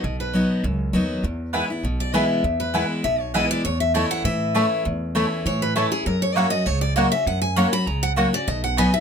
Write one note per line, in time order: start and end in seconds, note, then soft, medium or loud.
0.00 0.41 B1 medium
0.00 0.16 D#5 medium
0.04 0.61 B2 medium
0.20 0.48 B4 medium
0.34 0.62 F#3 medium
0.34 0.63 B3 medium
0.34 0.63 D#4 loud
0.34 0.63 F#4 medium
0.64 0.89 C#2 medium
0.64 1.21 F#2 loud
0.93 1.19 D#2 medium
0.93 1.22 F#3 medium
0.93 1.23 B3 loud
0.93 1.23 D#4 medium
0.93 1.23 F#4 loud
1.23 1.61 E2 medium
1.23 1.82 E2 medium
1.53 1.69 E3 medium
1.53 1.69 G#3 medium
1.53 1.63 B3 medium
1.53 1.69 B3 loud
1.53 1.63 E4 medium
1.53 1.69 E4 medium
1.53 1.63 B4 loud
1.53 1.64 G#5 medium
1.70 1.85 B3 soft
1.70 1.84 E4 medium
1.83 2.21 B1 medium
1.83 2.42 B2 medium
2.00 2.15 D5 medium
2.14 2.43 E3 loud
2.14 2.43 G#3 loud
2.14 2.23 B3 loud
2.14 2.43 B3 loud
2.14 2.24 E4 loud
2.14 2.44 E4 loud
2.14 2.24 B4 loud
2.14 2.60 E5 loud
2.14 2.24 G#5 loud
2.44 2.82 E2 loud
2.44 3.02 E2 medium
2.60 2.88 B4 medium
2.74 3.03 E3 medium
2.74 3.03 G#3 loud
2.74 2.84 B3 medium
2.74 3.04 B3 medium
2.74 2.84 E4 medium
2.74 3.04 E4 medium
2.74 2.84 B4 medium
2.74 2.84 G#5 loud
3.04 3.42 B1 medium
3.04 3.62 B2 medium
3.04 3.20 E5 medium
3.20 3.34 C#5 loud
3.34 3.64 E3 loud
3.34 3.64 G#3 loud
3.34 3.44 B3 loud
3.34 3.64 B3 medium
3.34 3.44 E4 loud
3.34 3.65 E4 loud
3.34 3.44 B4 loud
3.34 3.50 D#5 loud
3.34 3.44 G#5 loud
3.51 3.64 D5 loud
3.65 4.03 E2 medium
3.65 4.23 E2 medium
3.65 3.80 C#5 medium
3.80 3.94 E5 loud
3.94 4.24 E3 medium
3.94 4.04 A3 medium
3.94 4.24 A3 medium
3.94 4.25 C#4 loud
3.94 4.04 E4 medium
3.94 4.25 E4 medium
3.94 4.05 C#5 medium
3.94 4.10 D#5 loud
3.94 4.05 A5 loud
4.11 4.25 F#5 loud
4.24 4.62 A2 medium
4.24 4.54 E3 loud
4.24 4.82 E5 loud
4.55 4.84 E3 medium
4.55 4.64 A3 loud
4.55 4.84 A3 loud
4.55 4.85 C#4 loud
4.55 4.65 E4 loud
4.55 4.85 E4 loud
4.55 4.65 C#5 loud
4.55 4.65 A5 loud
4.85 5.43 E2 medium
4.85 5.24 E2 loud
5.15 5.44 E3 medium
5.15 5.25 A3 medium
5.15 5.44 A3 loud
5.15 5.45 C#4 medium
5.15 5.25 E4 medium
5.15 5.45 E4 loud
5.15 5.25 C#5 loud
5.15 5.25 A5 loud
5.45 5.83 A2 medium
5.45 5.74 E3 medium
5.45 5.61 C#5 medium
5.62 5.75 B4 medium
5.76 5.91 E3 loud
5.76 5.85 A3 loud
5.76 5.91 A3 medium
5.76 5.92 C#4 medium
5.76 5.85 E4 loud
5.76 5.90 E4 loud
5.76 5.91 A4 medium
5.76 5.86 C#5 loud
5.76 5.86 A5 loud
5.91 6.07 C#4 medium
5.91 6.06 E4 medium
5.91 6.06 G#4 loud
6.06 6.44 F#2 medium
6.06 6.64 F#2 medium
6.06 6.21 A#4 medium
6.22 6.36 C#5 medium
6.36 6.51 F#3 medium
6.36 6.45 A#3 medium
6.36 6.52 A#3 medium
6.36 6.52 C#4 loud
6.36 6.46 F#4 medium
6.36 6.51 F#4 loud
6.36 6.46 C#5 medium
6.36 6.50 E5 loud
6.36 6.46 F#5 loud
6.50 6.67 C#4 soft
6.50 6.66 F#4 medium
6.50 6.66 D#5 loud
6.66 7.04 C#2 medium
6.66 7.24 C#3 medium
6.66 6.81 C#5 medium
6.81 6.95 D5 loud
6.96 7.11 F#3 medium
6.96 7.06 A#3 medium
6.96 7.12 A#3 loud
6.96 7.12 C#4 medium
6.96 7.06 F#4 loud
6.96 7.11 F#4 loud
6.96 7.06 C#5 loud
6.96 7.11 D#5 medium
6.96 7.07 F#5 loud
7.12 7.27 C#4 medium
7.12 7.26 F#4 medium
7.12 7.26 E5 loud
7.26 7.64 F#2 loud
7.26 7.85 F#2 medium
7.26 7.41 F#5 medium
7.42 7.56 G#5 loud
7.56 7.72 F#3 medium
7.56 7.66 A#3 medium
7.56 7.72 A#3 medium
7.56 7.73 C#4 loud
7.56 7.66 F#4 medium
7.56 7.71 F#4 medium
7.56 7.66 C#5 loud
7.56 7.67 F#5 loud
7.56 7.72 A#5 loud
7.72 7.88 C#4 medium
7.72 7.87 F#4 medium
7.72 7.87 B5 loud
7.87 8.24 C#2 medium
7.87 8.45 C#3 loud
7.87 8.02 A#5 medium
8.03 8.12 F#5 loud
8.16 8.32 F#3 medium
8.16 8.26 A#3 loud
8.16 8.32 A#3 medium
8.16 8.33 C#4 medium
8.16 8.27 F#4 loud
8.16 8.32 F#4 loud
8.16 8.27 C#5 loud
8.16 8.27 F#5 loud
8.33 8.48 C#4 medium
8.33 8.47 F#4 medium
8.33 8.48 D5 loud
8.48 8.85 B1 loud
8.48 9.00 B2 medium
8.48 8.63 D#5 medium
8.64 8.78 F#5 loud
8.77 8.93 F#3 medium
8.77 8.87 B3 medium
8.77 8.93 B3 loud
8.77 8.94 D#4 loud
8.77 8.87 F#4 medium
8.77 8.92 F#4 medium
8.77 8.87 D#5 loud
8.77 8.93 G#5 loud
8.77 8.87 B5 loud
8.93 9.00 D#4 medium
8.93 9.00 F#4 medium
8.93 9.00 E5 loud